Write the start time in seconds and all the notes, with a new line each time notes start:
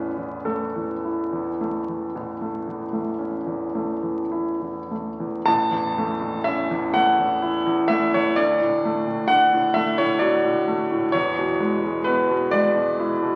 Already playing: A1 E2 A3 C#4 B4
0.17 E2
0.45 A3 A4
0.76 E2
1.05 E4
1.32 E2
1.61 A3
1.89 E2
2.15 A1
2.41 A3
2.67 E2
2.93 A3
3.19 C#4
3.47 E2
3.75 A3
4.03 E2
4.32 E4
4.62 E2
4.91 A3
5.20 E2
5.46 A1 A5
5.71 E2
5.98 A3
6.22 E2
6.44 C#4 E5
6.71 E2
6.94 A3 F#5
7.19 E2
7.42 E4
7.66 E2
7.88 A3 E5
8.14 E2 C#5
8.36 D2 D5
8.61 A2
8.85 A3
9.07 A2
9.28 D4 F#5
9.53 A2
9.74 A3 E5
9.98 A2 C#5
10.19 F#4 D5
10.44 A2
10.68 A3
10.92 A2
11.12 E2 C#5
11.38 B2
11.60 G#3
11.83 B2
12.04 B3 B4
12.30 B2
12.51 G#3 D5
12.76 B2
13.00 E4
13.23 B2